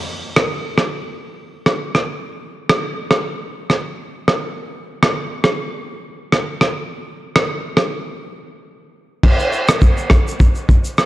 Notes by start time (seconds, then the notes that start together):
0.36 cross-stick
0.78 cross-stick
1.66 cross-stick
1.95 cross-stick
2.69 cross-stick
3.11 cross-stick
3.70 cross-stick
4.28 cross-stick
5.03 cross-stick
5.44 cross-stick
6.32 cross-stick
6.61 cross-stick
7.36 cross-stick
7.77 cross-stick
9.23 kick, crash
9.40 shaker
9.53 shaker
9.68 cross-stick, shaker
9.81 kick, shaker
9.97 shaker
10.10 kick, cross-stick, shaker
10.28 shaker
10.40 kick, shaker
10.55 shaker
10.69 kick, shaker
10.85 shaker
10.98 cross-stick, shaker